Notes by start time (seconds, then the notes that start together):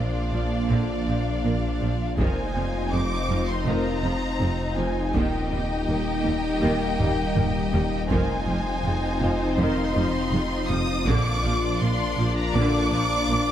Already playing: A#1 F3 A#3 D4 F4 D5 F5
0.33 A#1 A#2 F3
0.70 A#1 A#2 D3
1.07 A#1 A#2 F3
1.44 A#1 A#2 A#3
1.81 A#1 A#2 F3
2.18 F1 F2 D#3 F3 C4 D#4 F4 C5 D#5 G#5, taiko
2.55 F1 F2 F3
2.92 F1 F2 G#3 D6
3.29 F1 F2 F3
3.49 C6
3.66 F1 F2 D#3 A#5
4.03 F1 F2 F3
4.40 F1 F2 G#3
4.77 F1 F2 F3 G#5
5.14 D#1 D#2 D#3 G3 A#3 D#4 G4 D#5 G5, taiko
5.51 D#2 G3 G5
5.88 D#2 A#3
6.25 D#2 G3
6.62 D#2 D#3
6.99 D#2 G3, taiko low-mid
7.37 D#2 A#3, taiko low-mid
7.74 D#2 G3, taiko low
8.10 F1 F2 D#3 F3 C4 D#4 F4 C5 D#5 G#5, taiko
8.48 F1 F2 F3
8.85 F1 F2 G#3
9.22 F1 F2 F3
9.58 F1 F2 D#3 C6
9.95 F1 F2 F3
10.32 F1 F2 G#3
10.69 F1 F2 F3 D#6
11.06 A#1 A#2 D3 A#3 D4 D5 D6, taiko
11.44 A#1 A#2 F3
11.81 A#1 A#2 A#3 C6
12.18 A#1 A#2 F3
12.37 A#5
12.55 A#1 A#2 D3 D6
12.92 A#1 A#2 F3
13.29 A#1 A#2 A#3